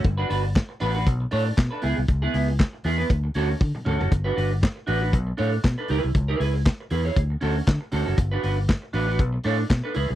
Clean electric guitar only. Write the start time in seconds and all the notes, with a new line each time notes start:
0.04 muted clean electric guitar stroke
0.18 D4 F#4 B4
0.29 D4 F#4 B4
0.43 muted clean electric guitar stroke
0.55 muted clean electric guitar stroke
0.69 muted clean electric guitar stroke
0.80 D4 F#4 B4
0.95 D4 F#4 B4
1.20 muted clean electric guitar stroke
1.31 D4 A4 C#5
1.45 muted clean electric guitar stroke
1.56 muted clean electric guitar stroke
1.71 D4 A4 B4
1.82 B3 E4 G#4
1.97 muted clean electric guitar stroke
2.08 muted clean electric guitar stroke
2.22 B3 E4 G#4
2.33 B3 E4 G#4
2.48 muted clean electric guitar stroke
2.59 muted clean electric guitar stroke
2.73 muted clean electric guitar stroke
2.85 B3 E4 G#4
2.98 B3 E4 B4
3.09 muted clean electric guitar stroke
3.24 muted clean electric guitar stroke
3.35 C#4 F#4 A4
3.50 muted clean electric guitar stroke
3.61 muted clean electric guitar stroke
3.75 muted clean electric guitar stroke
3.85 C#4 F#4 A4
3.99 C#4 F#4 A4
4.11 muted clean electric guitar stroke
4.24 D4 F#4 B4
4.36 D4 F#4 B4
4.51 muted clean electric guitar stroke
4.61 muted clean electric guitar stroke
4.76 muted clean electric guitar stroke
4.87 D4 F#4 B4
5.01 D4 F#4 B4
5.27 muted clean electric guitar stroke
5.37 D4 A4 C#5
5.52 muted clean electric guitar stroke
5.64 muted clean electric guitar stroke
5.78 D4 A4 B4
5.89 E4 G#4 B4
6.03 muted clean electric guitar stroke
6.15 muted clean electric guitar stroke
6.28 E4 G#4 B4
6.40 E4 G#4 B4
6.54 muted clean electric guitar stroke
6.65 muted clean electric guitar stroke
6.80 muted clean electric guitar stroke
6.91 E4 G#4 B4
7.05 E4 G#4 C#5
7.30 muted clean electric guitar stroke
7.41 C#4 F#4 A4
7.56 muted clean electric guitar stroke
7.66 muted clean electric guitar stroke
7.81 muted clean electric guitar stroke
7.92 C#4 F#4 A4
8.06 C#4 F#4 A4
8.17 muted clean electric guitar stroke
8.31 D4 F#4 B4
8.43 D4 F#4 B4
8.57 muted clean electric guitar stroke
8.68 muted clean electric guitar stroke
8.82 muted clean electric guitar stroke
8.93 D4 F#4 B4
9.07 D4 F#4 B4
9.33 muted clean electric guitar stroke
9.44 D4 A4 C#5
9.58 muted clean electric guitar stroke
9.69 muted clean electric guitar stroke
9.84 D4 A4 B4
9.95 E4 G#4 B4
10.10 muted clean electric guitar stroke